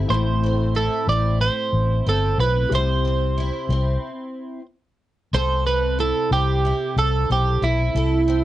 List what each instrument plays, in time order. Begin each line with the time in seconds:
Already playing: upright piano G3 C4 E4 A4, twelve-string acoustic guitar C4 E4 A4
0.09 fingered electric bass A1, twelve-string acoustic guitar A2, upright piano A3 C4 E4 B5, clean electric guitar C5
0.44 twelve-string acoustic guitar C4
0.75 twelve-string acoustic guitar E4, clean electric guitar A4
1.07 fingered electric bass A1, twelve-string acoustic guitar C4, clean electric guitar D5
1.41 twelve-string acoustic guitar E4, clean electric guitar C5
1.73 fingered electric bass A1
2.06 fingered electric bass G1, twelve-string acoustic guitar C4, clean electric guitar A4
2.38 fingered electric bass B1, twelve-string acoustic guitar E4, clean electric guitar B4
2.69 fingered electric bass C2, twelve-string acoustic guitar C3 C5, upright piano G3 C4 E4
2.74 upright piano C5, clean electric guitar C5
3.05 twelve-string acoustic guitar C4
3.38 twelve-string acoustic guitar E4
3.69 fingered electric bass C2, twelve-string acoustic guitar C4
5.33 fingered electric bass C2, twelve-string acoustic guitar C3 A4, clean electric guitar C5
5.67 twelve-string acoustic guitar C4, clean electric guitar B4
5.99 twelve-string acoustic guitar E4, clean electric guitar A4
6.31 fingered electric bass C2, twelve-string acoustic guitar C4, clean electric guitar G4
6.65 twelve-string acoustic guitar E4
6.96 fingered electric bass C2, twelve-string acoustic guitar A4, clean electric guitar A4
7.30 fingered electric bass B1, twelve-string acoustic guitar C4, clean electric guitar G4
7.61 fingered electric bass B1, twelve-string acoustic guitar E4, clean electric guitar E4
7.95 fingered electric bass C2, twelve-string acoustic guitar A4
8.28 twelve-string acoustic guitar C4